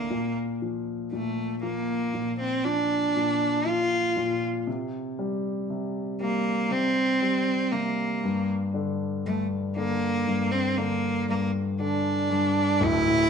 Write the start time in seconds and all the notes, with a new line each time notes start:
Already playing: C3 D3 A#3
0.10 A#2
0.62 F3
1.12 A#2 A3
1.63 F3 A#3
2.14 A#2
2.40 C4
2.65 F3 D4
3.16 A#2
3.66 F3 F4
4.16 A#2
4.67 C3
5.19 G3
5.70 C3
6.20 G3 A#3
6.71 C3 C4
7.22 G3
7.72 C3 A#3
8.23 G2
8.74 D3
9.26 G2 A3
9.76 D3 A#3
10.27 G2
10.52 C4
10.77 D3 A#3
11.29 G2 A#3
11.79 D3 D4
12.30 G2
12.80 D1 D2 E4
13.06 A2